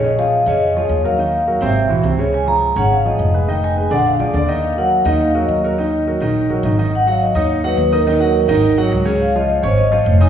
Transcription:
<<
  \new Staff \with { instrumentName = "Vibraphone" } { \time 4/4 \key ees \minor \tempo 4 = 209 ees''8 f''4 ees''4 des''4 f''8~ | f''4. fes''4 r4. | aes''8 bes''4 ges''8 f''8 ees''4 r8 | g''8 aes''4 ges''8 f''8 d''4 r8 |
f''8 ges''4 ees''8 f''8 ees''4 des''8 | ees''2. r4 | ges''8 f''8 ees''8 des''8 ees''8 ces''4 bes'8~ | bes'2~ bes'8 r4. |
f''8 ees''8 des''8 c''8 ees''8 des''4 aes''8 | }
  \new Staff \with { instrumentName = "Grand piano" } { \time 4/4 \key ees \minor <cis cis' cis''>8 <f f' aes'>4 <des des' des''>4 <f f' aes'>4 <ges ges' bes'>8 | <ees ees' ees''>4 <ges ges' bes'>8 <c c' c''>4 <e e' ges'>8 <c c' c''>8 <des des' des''>8~ | <des des' des''>8 <f f' aes'>4 <des des' des''>4 <f f' aes'>4 <aes aes' ces''>8 | <ees ees' ees''>4 <aes aes' ces''>8 <d d' d''>4 <f f' aes'>8 <d d' d''>8 <ees ees' ees''>8~ |
<ees ees' ees''>8 <ges ges' bes'>4 <ees ees' ees''>4 <ges ges' bes'>4 <ges ges' bes'>8 | <ees ees' ees''>4 <ges ges' bes'>8 <ees ees' ees''>4 <ges ges' bes'>8 <ees ees' ees''>8 <ees ees' ees''>8 | r8 <ges ges' ges''>4 <ees' ees'' ees'''>4 <ges ges' ges''>4 <ees' ees'' ees'''>8 | <ees ees' ees''>8 <ges ges' ges''>4 <ees ees' ees''>4 <ges ges' ges''>4 <des des' des''>8~ |
<des des' des''>8 <f f' f''>4 <des' des'' des'''>4 <f f' f''>4 <ees' ees'' ees'''>8 | }
  \new Staff \with { instrumentName = "Upright bass" } { \clef bass \time 4/4 \key ees \minor bes,,4. f,4. ees,4~ | ees,4. aes,,4 b,,8 des,4~ | des,4. aes,,4. f,,4~ | f,,4. bes,,4 d,8 ees,4~ |
ees,4. ees,4. ees,4~ | ees,4. bes,,4 bes,,8 aes,,4~ | aes,,4. ees,4. ees,4~ | ees,4. aes,,4. des,4~ |
des,4. aes,,4. f,,4 | }
>>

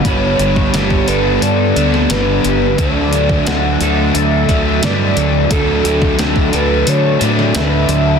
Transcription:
<<
  \new Staff \with { instrumentName = "Soft synth lead" } { \time 4/4 \key d \major \tempo 4 = 88 cis''4. b'8 d''4 b'4 | d''4 fis''4 e''4 d''4 | a'4 a'8 b'8 cis''8 d''8 e''4 | }
  \new Staff \with { instrumentName = "Clean electric guitar" } { \time 4/4 \key d \major b'4 g'8 a'8 a'4 b'8 g'8 | a'4 fis'8 a'8 a'4 b'8 a'8 | a'4 g''8 a'8 a'4 b'8 a'8 | }
  \new Staff \with { instrumentName = "Overdriven electric guitar" } { \time 4/4 \key d \major <g, d g b d'>4 <d g b d'>8 <g b d'>4 <g b d'>8 <d g b d'>4 | <d fis a d'>4 <d fis a d'>8 <fis a d'>4 <fis a d'>8 <d fis a d'>4 | <d fis a d'>4 <d fis a d'>8 <fis a d'>4 <fis a d'>8 <d fis a d'>4 | }
  \new Staff \with { instrumentName = "Overdriven electric guitar" } { \time 4/4 \key d \major <g, d g b d'>8 <g b d'>8 <d g b d'>8 <g b d'>4 <g b d'>8 <d g b d'>4 | <d fis a d'>8 <fis a d'>8 <d fis a d'>8 <fis a d'>4 <fis a d'>8 <d fis a d'>4 | <d fis a d'>8 <fis a d'>8 <d fis a d'>8 <fis a d'>4 <fis a d'>8 <d fis a d'>4 | }
  \new Staff \with { instrumentName = "Fingered electric bass" } { \clef bass \time 4/4 \key d \major g,,8 g,,8 g,,8 g,,8 g,8 d,8 g,,8 g,,8 | d,4 d,8 d,8 d,8 d,8 g,8 d,8 | d,8 d,8 d,8 d,8 d8 a,8 d,8 d,8 | }
  \new DrumStaff \with { instrumentName = "Drums" } \drummode { \time 4/4 <hh bd>8 hh16 bd16 <hh sn>16 bd16 hh8 hh8 hh16 sn16 <hh sn>8 hh8 | <hh bd>8 hh16 bd16 <hh sn>8 hh8 hh8 <hh bd>8 <hh sn>8 hh8 | <hh bd>8 hh16 bd16 <hh sn>16 bd16 hh8 hh8 hh16 sn16 <hh sn>8 hh8 | }
>>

